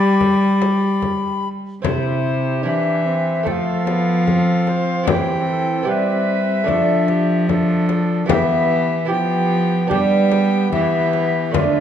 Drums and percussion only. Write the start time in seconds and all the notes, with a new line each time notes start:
0.21 frame drum
0.62 frame drum
1.02 frame drum
1.84 frame drum
3.47 frame drum
3.87 frame drum
4.27 frame drum
4.67 frame drum
5.07 frame drum
6.68 frame drum
7.08 frame drum
7.49 frame drum
7.89 frame drum
8.29 frame drum
9.91 frame drum
10.32 frame drum
10.73 frame drum
11.13 frame drum
11.54 frame drum